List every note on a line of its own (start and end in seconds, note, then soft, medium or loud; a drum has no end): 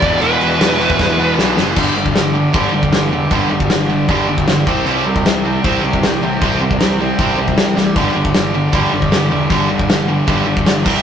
0.00 0.18 E1 medium
0.00 0.20 E2 loud
0.00 0.20 B2 loud
0.00 0.21 E3 loud
0.00 0.21 D5 loud
0.00 kick loud
0.00 crash medium
0.21 0.38 E1 loud
0.21 0.39 E2 loud
0.21 0.40 B2 loud
0.21 0.40 E3 loud
0.21 1.34 B4 medium
0.21 crash medium
0.41 0.57 E1 medium
0.41 0.58 E2 medium
0.41 0.59 B2 medium
0.41 0.59 E3 medium
0.41 crash medium
0.59 0.92 E1 medium
0.59 0.78 E2 medium
0.59 0.79 B2 medium
0.59 0.79 E3 medium
0.59 snare loud
0.59 crash medium
0.80 0.97 E2 medium
0.80 0.97 B2 medium
0.80 0.98 E3 loud
0.80 crash medium
0.90 kick medium
0.98 1.15 E1 loud
0.98 1.16 E2 medium
0.98 1.17 B2 loud
0.98 1.17 E3 loud
0.98 kick loud
0.98 snare medium
1.18 1.34 E1 medium
1.18 1.36 E2 medium
1.18 1.37 B2 medium
1.18 1.37 E3 loud
1.37 1.54 B1 medium
1.37 1.55 E2 medium
1.37 1.56 B2 medium
1.37 1.56 E3 medium
1.37 snare medium
1.56 1.73 F#1 loud
1.56 1.75 E2 medium
1.56 1.75 B2 medium
1.56 1.75 E3 loud
1.56 snare medium
1.76 1.92 G1 loud
1.76 1.95 G2 medium
1.76 1.95 D3 loud
1.76 1.95 G3 medium
1.76 kick loud
1.76 crash loud
1.76 crash medium
1.96 2.12 G1 medium
1.96 2.14 G2 medium
1.96 2.14 D3 medium
2.06 kick medium
2.15 2.47 G1 medium
2.15 2.32 G2 medium
2.15 2.33 D3 medium
2.15 snare medium
2.15 crash medium
2.34 2.52 G2 medium
2.34 2.52 D3 medium
2.54 2.70 G1 medium
2.54 2.72 G2 medium
2.54 2.73 D3 medium
2.54 2.73 G3 loud
2.54 kick loud
2.54 crash medium
2.73 2.89 G1 medium
2.73 2.91 G2 medium
2.73 2.91 D3 medium
2.83 kick medium
2.92 3.08 G1 medium
2.92 3.10 G2 medium
2.92 3.10 D3 medium
2.92 snare loud
2.92 crash medium
3.12 3.28 E1 loud
3.12 3.30 G2 medium
3.12 3.30 D3 medium
3.30 3.47 G1 loud
3.30 3.50 G2 loud
3.30 3.50 D3 medium
3.30 3.50 G3 loud
3.30 kick loud
3.30 crash medium
3.50 3.66 G1 medium
3.50 3.68 G2 medium
3.50 3.69 D3 medium
3.60 kick loud
3.70 4.02 G1 medium
3.70 3.88 G2 medium
3.70 3.88 D3 medium
3.70 snare loud
3.70 crash medium
3.90 4.07 G2 medium
3.90 4.07 D3 medium
4.08 4.25 G1 medium
4.08 4.27 G2 medium
4.08 4.27 D3 medium
4.08 4.28 G3 medium
4.08 kick loud
4.08 crash medium
4.28 4.44 G1 medium
4.28 4.46 G2 medium
4.28 4.46 D3 medium
4.38 kick medium
4.47 4.63 G1 medium
4.47 4.65 G2 medium
4.47 4.66 D3 medium
4.47 snare loud
4.47 crash medium
4.67 4.83 C2 medium
4.67 4.86 C3 loud
4.67 4.86 G3 medium
4.67 4.86 C4 loud
4.67 kick loud
4.86 5.02 C2 loud
4.86 5.05 C3 loud
4.86 5.05 G3 medium
4.86 5.05 C4 loud
4.86 crash medium
5.05 5.21 C2 medium
5.05 5.23 C3 medium
5.05 5.23 G3 medium
5.16 kick medium
5.24 5.56 C2 medium
5.24 5.43 C3 medium
5.24 5.43 G3 medium
5.24 snare loud
5.24 crash medium
5.45 5.62 C3 medium
5.45 5.62 G3 loud
5.45 6.21 C4 medium
5.64 5.80 C2 medium
5.64 5.82 C3 medium
5.64 5.82 G3 medium
5.64 5.82 C4 medium
5.64 kick loud
5.64 crash medium
5.83 5.99 C2 medium
5.83 6.01 C3 medium
5.83 6.01 G3 medium
5.93 kick medium
6.02 6.18 C2 loud
6.02 6.20 C3 medium
6.02 6.20 G3 medium
6.02 snare loud
6.02 crash medium
6.21 6.37 A1 medium
6.21 6.40 C3 medium
6.21 6.40 G3 medium
6.21 6.99 C4 medium
6.41 6.57 C2 loud
6.41 6.60 C3 loud
6.41 6.60 G3 loud
6.41 6.60 C4 loud
6.41 kick loud
6.41 crash medium
6.60 6.76 C2 medium
6.60 6.78 C3 medium
6.60 6.78 G3 medium
6.71 kick medium
6.80 7.12 C2 medium
6.80 6.98 C3 medium
6.80 6.98 G3 medium
6.80 snare loud
6.80 crash medium
7.00 7.17 C3 medium
7.00 7.17 G3 medium
7.00 7.76 C4 medium
7.19 7.35 C2 medium
7.19 7.37 C3 medium
7.19 7.37 G3 loud
7.19 7.37 C4 medium
7.19 kick loud
7.19 crash medium
7.38 7.54 C2 medium
7.38 7.56 C3 medium
7.38 7.56 G3 medium
7.48 kick medium
7.56 7.73 C2 medium
7.56 7.75 C3 medium
7.56 7.75 G3 medium
7.56 snare loud
7.56 crash medium
7.76 7.97 A1 medium
7.76 7.94 C3 medium
7.76 7.94 G3 medium
7.76 snare medium
7.96 8.12 G1 loud
7.96 8.14 G2 medium
7.96 8.14 D3 loud
7.96 8.15 G3 loud
7.96 kick loud
7.96 crash medium
8.15 8.31 G1 medium
8.15 8.32 G2 medium
8.15 8.33 D3 medium
8.25 kick medium
8.34 8.66 G1 medium
8.34 8.52 G2 medium
8.34 8.52 D3 medium
8.34 snare loud
8.34 crash medium
8.54 8.71 G2 medium
8.54 8.71 D3 medium
8.73 8.89 G1 loud
8.73 8.92 G2 medium
8.73 8.92 D3 medium
8.73 8.92 G3 loud
8.73 kick loud
8.73 crash medium
8.92 9.08 G1 medium
8.92 9.10 G2 medium
8.92 9.10 D3 medium
9.02 kick medium
9.11 9.27 G1 loud
9.11 9.29 G2 medium
9.11 9.30 D3 medium
9.11 snare loud
9.11 crash medium
9.30 9.47 E1 loud
9.30 9.48 G2 medium
9.30 9.49 D3 medium
9.50 9.66 G1 loud
9.50 9.68 G2 loud
9.50 9.68 D3 loud
9.50 9.69 G3 loud
9.50 kick loud
9.50 crash medium
9.69 9.86 G1 medium
9.69 9.87 G2 medium
9.69 9.87 D3 medium
9.79 kick medium
9.88 10.21 G1 medium
9.88 10.06 G2 medium
9.88 10.06 D3 medium
9.88 snare loud
9.88 crash medium
10.07 10.25 G2 medium
10.07 10.25 D3 medium
10.26 10.44 G1 medium
10.26 10.45 G2 medium
10.26 10.45 D3 medium
10.26 10.46 G3 medium
10.26 kick loud
10.26 crash medium
10.46 10.62 G1 medium
10.46 10.64 G2 medium
10.46 10.64 D3 medium
10.57 kick medium
10.65 10.82 G1 loud
10.65 10.84 G2 medium
10.65 10.84 D3 medium
10.65 snare loud
10.65 crash medium
10.85 11.02 C2 medium
10.85 11.02 C3 loud
10.85 11.02 G3 loud
10.85 11.02 C4 loud
10.85 kick loud
10.85 crash loud